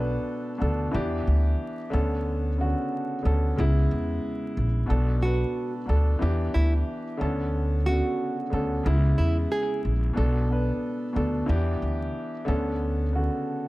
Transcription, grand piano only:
Already playing: B2 B3 D4 A4 B4
0.58 B2 B3 D4 A4
0.91 E3 B3 D4 G4
1.90 D3 B3 C#4 A4
2.57 C#3 B3 C#4 F#4
2.64 D3
3.23 D3 B3 C#4 A4
3.56 C#3 G#3 B3 E4
4.86 B2 B3 D4 A4
5.21 B2 B3 D4 B4
5.86 B2 B3 D4 A4
6.19 E3 B3 D4 G4
7.17 D3 B3 C#4 A4
7.84 C#3 B3 C#4 F#4
7.91 D3
8.50 D3 B3 C#4 A4
8.83 C#3 G#3 B3 E4
10.13 B2 B3 D4 A4
10.49 B2 B3 D4 B4
11.13 B2 B3 D4 A4
11.46 E3 B3 D4 G4
12.45 D3 B3 C#4 A4
13.12 C#3 B3 C#4 F#4
13.18 D3

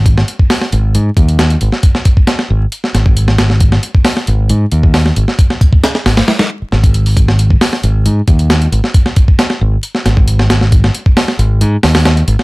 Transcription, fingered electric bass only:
Already playing: G#1
0.73 G#1
0.95 G#2
1.17 D#2
1.61 G#1
2.50 G#1
2.94 G#1
4.28 G#1
4.50 G#2
4.72 D#2
5.17 G#1
6.06 G#1
6.62 muted fingered electric bass stroke
6.73 G#1
7.83 G#1
8.06 G#2
8.28 D#2
8.72 G#1
9.61 G#1
10.06 G#1
11.39 G#1
11.61 G#2
11.83 D#2
12.28 G#1

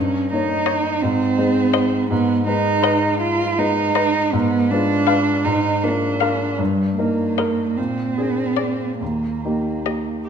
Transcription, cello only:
Already playing: C#4
0.33 D#4
1.02 C4
2.10 B3
2.47 D#4
3.21 F4
3.58 D#4
4.33 B3
4.71 D4
5.45 D#4
5.83 D4
6.58 G3
6.96 A#3
7.77 C4
9.00 A#3

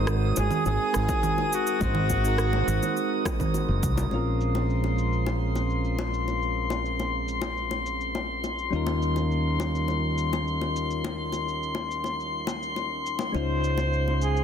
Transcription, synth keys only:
Already playing: G#3 C4 D#4 F#4 A#4
0.93 G#3 C4 D#4 F#4
0.98 A#4
1.80 G#3 C4 D#4 F#4 C5
2.23 G#3 C4 D#4 F#4
2.28 A#4
4.10 G#3 C4 C#4
4.14 F4 A#4
8.70 G3 C#4 D#4
8.75 F4 A#4
13.32 G#3 C#4 D#4
13.36 F4 C5

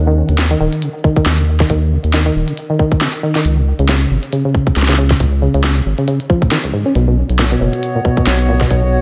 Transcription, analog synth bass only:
Already playing: D#2
0.29 D#2
0.60 D#1
1.26 D#2
1.70 D#2
2.04 D#2
2.36 D#1
3.45 C#2
3.79 C#2
4.11 G#1
4.76 C#2
5.20 C#2
5.54 C#2
5.86 G#1
6.95 B1
7.30 B1
7.61 F#1
8.27 B1
8.71 B1

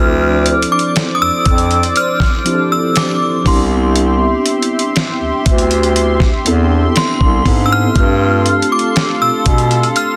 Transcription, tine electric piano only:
Already playing: F3 C4 D4 E4 A4 C5
2.45 F3 C4 D4 E4 G4
2.54 A4
3.45 B3 C4 D4 E4 G4
6.45 B3 C4 D4 E4 A4
7.45 B3 C4 D4 E4 A4
7.95 A3 C4 D4 F4 G4

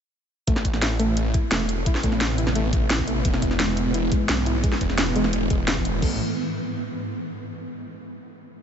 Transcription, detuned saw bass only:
0.48 A1
0.82 A1
1.52 E1
2.04 A1
2.56 A1
2.90 A1
3.25 E1
3.60 E1
4.29 B1
4.81 E1
5.33 E1
5.85 E1
6.02 A1

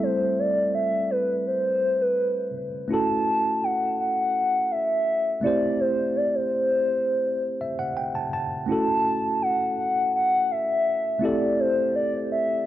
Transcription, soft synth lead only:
0.03 C5
0.39 D5
0.75 E5
1.11 B4
1.47 C5
2.01 B4
2.92 A5
3.64 F#5
3.99 F#5
4.71 E5
5.44 D5
5.80 C5
6.16 D5
6.35 C5
8.70 A5
9.42 F#5
9.79 F#5
10.15 F#5
10.51 E5
11.24 D5
11.60 C5
11.96 D5
12.32 E5

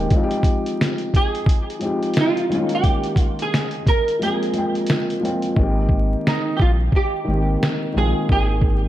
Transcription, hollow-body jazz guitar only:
1.16 G#4
2.20 F4
2.63 D#4
2.75 G4
3.22 F4
3.42 G#4
3.88 A#4
4.23 G#4
4.67 G4
6.28 D#4
6.57 G4
6.61 F4
6.96 G4
7.98 G#4
8.32 G#4
8.77 G4

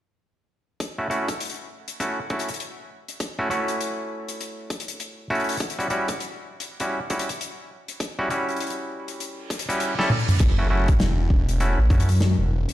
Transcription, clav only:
0.98 A3 C#4 E4 F#4
1.10 A3 C#4 E4 F#4
2.00 A3 C#4 E4 F#4
2.30 A3 C#4 E4 F#4
3.39 A3 C#4 E4 F#4
3.50 A3 C#4 E4 F#4
5.30 A3 C#4 E4 F#4
5.79 G3 C#4 E4 F#4
5.90 G3 C#4 E4 F#4
6.80 G3 C#4 E4 F#4
7.10 G3 C#4 E4 F#4
8.19 G3 C#4 E4 F#4
8.30 G3 C#4 E4 F#4
9.69 G3 C#4 E4 F#4
9.99 G3 C#4 E4 A4
10.59 A3 C#4 E4 F#4
10.70 A3 C#4 E4 F#4
11.60 A3 C#4 E4 F#4
11.90 A3 C#4 E4 F#4

